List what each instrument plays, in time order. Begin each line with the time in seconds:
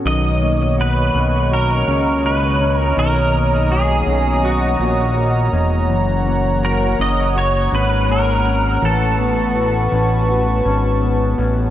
Already playing: clean electric guitar B3 C#4 F#4
0.04 analog synth bass B1, clean electric guitar D#3, analog synth pad C#5 D#5 A#5 C#6, pedal steel guitar D#5
0.42 clean electric guitar A#3
0.78 clean electric guitar F#4, pedal steel guitar B4
1.14 analog synth bass B1, clean electric guitar C#4
1.51 clean electric guitar F#4, pedal steel guitar A#4
1.88 analog synth bass C#2, clean electric guitar C#4
2.26 pedal steel guitar B4
2.60 clean electric guitar C#4
2.78 pedal steel guitar A#4
2.97 analog synth bass B1, clean electric guitar D#3, pedal steel guitar A#4, analog synth pad D#6
3.34 clean electric guitar A#3
3.70 clean electric guitar F#4, pedal steel guitar G#4
4.06 analog synth bass B1, clean electric guitar C#4
4.43 clean electric guitar F#4, pedal steel guitar F#4
4.79 analog synth bass A#1, clean electric guitar B3
4.98 clean electric guitar C#4
5.16 clean electric guitar A#3
5.52 analog synth bass E1, clean electric guitar C#4
5.89 analog synth bass F#1, clean electric guitar E3, analog synth pad C#5 F#5
6.26 clean electric guitar A#3
6.63 clean electric guitar F#4, pedal steel guitar A#4
6.99 analog synth bass F#1, clean electric guitar C#4, pedal steel guitar D#5
7.36 clean electric guitar F#4, pedal steel guitar C#5
7.72 analog synth bass G#1, clean electric guitar C#4, pedal steel guitar B4
8.08 clean electric guitar A#3, pedal steel guitar A#4
8.45 clean electric guitar C#4
8.82 analog synth bass A1, clean electric guitar E3, pedal steel guitar A4, analog synth pad B4 A5 C#6
9.19 clean electric guitar B3
9.55 clean electric guitar F#4
9.92 analog synth bass A1, clean electric guitar C#4
10.29 clean electric guitar F#4
10.65 analog synth bass G#1, clean electric guitar C#4
11.02 clean electric guitar B3
11.38 analog synth bass A1, clean electric guitar C#4